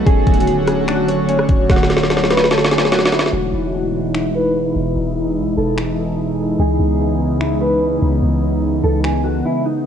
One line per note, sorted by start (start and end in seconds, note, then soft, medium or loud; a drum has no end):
0.00 3.29 F#3 medium
0.00 3.29 A3 medium
0.00 1.12 B3 medium
0.00 0.94 D#4 medium
0.00 3.29 F#4 medium
0.00 1.85 A4 medium
0.06 0.26 D1 loud
0.06 3.30 D3 medium
0.06 0.67 C#4 loud
0.06 0.84 G#4 loud
0.06 3.30 C#5 medium
0.06 kick loud
0.06 closed hi-hat medium
0.27 1.45 D1 loud
0.27 kick loud
0.27 closed hi-hat soft
0.34 closed hi-hat medium
0.40 closed hi-hat medium
0.47 closed hi-hat medium
0.67 1.28 C#4 medium
0.67 cross-stick medium
0.67 closed hi-hat medium
0.88 2.10 D4 loud
0.88 1.07 F#4 medium
0.88 finger snap loud
0.88 closed hi-hat medium
1.08 1.66 C#5 medium
1.08 closed hi-hat medium
1.29 2.77 C#4 medium
1.29 closed hi-hat medium
1.39 cross-stick medium
1.49 1.69 D1 loud
1.49 kick loud
1.49 closed hi-hat medium
1.70 3.29 D1 loud
1.70 2.91 F#4 loud
1.70 kick loud
1.70 snare medium
1.70 closed hi-hat medium
1.76 snare medium
1.83 snare medium
1.90 snare medium
1.90 closed hi-hat medium
1.97 snare medium
2.04 snare medium
2.10 2.71 D4 medium
2.10 snare medium
2.10 closed hi-hat medium
2.17 snare medium
2.24 snare medium
2.30 2.50 B4 medium
2.30 snare medium
2.30 closed hi-hat medium
2.37 snare medium
2.44 snare medium
2.51 2.70 A4 loud
2.51 snare medium
2.51 closed hi-hat medium
2.58 snare medium
2.64 snare medium
2.71 5.51 D4 medium
2.71 2.91 G#4 medium
2.71 snare medium
2.71 closed hi-hat medium
2.78 snare loud
2.85 snare medium
2.92 5.35 F#4 medium
2.92 3.11 F#4 medium
2.92 snare loud
2.92 closed hi-hat medium
2.99 snare medium
3.05 snare loud
3.12 3.32 E4 medium
3.12 snare loud
3.12 closed hi-hat medium
3.19 snare loud
3.26 snare loud
3.33 3.52 E1 loud
3.33 6.56 B2 medium
3.33 9.82 E3 medium
3.33 9.82 G#3 medium
3.33 6.56 D#4 medium
3.33 6.56 E4 medium
3.33 4.10 F#4 medium
3.53 4.72 E1 medium
4.14 4.34 E4 medium
4.14 finger snap loud
4.35 4.92 B4 medium
4.76 4.95 E1 loud
4.96 5.38 E1 loud
5.37 5.49 G#1 medium
5.47 5.57 E1 loud
5.57 6.55 E1 loud
5.57 5.77 A4 medium
5.78 finger snap loud
6.59 6.79 C#2 loud
6.59 9.83 C#3 medium
6.59 9.86 B3 medium
6.59 9.83 D#4 medium
6.59 7.37 G#4 loud
6.80 7.98 C#2 loud
7.41 7.60 E4 medium
7.41 finger snap loud
7.61 8.19 B4 medium
8.02 8.22 C#2 loud
8.23 8.81 C#2 loud
8.84 9.43 C#2 loud
8.84 9.03 A4 medium
9.04 9.23 G#4 medium
9.04 finger snap loud
9.24 9.44 F#4 medium
9.45 9.65 E4 medium
9.66 9.85 D#4 medium